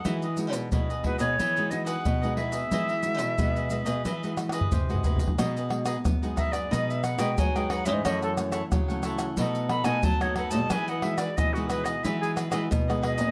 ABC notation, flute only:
X:1
M:4/4
L:1/16
Q:1/4=90
K:E
V:1 name="Flute"
z6 B c3 d f3 e2- | e12 z4 | [K:B] z6 e =d ^d e f =g ^g =g f e | d =A z8 b g =a c f a |
g f e =d ^d F B d e G z4 d2 |]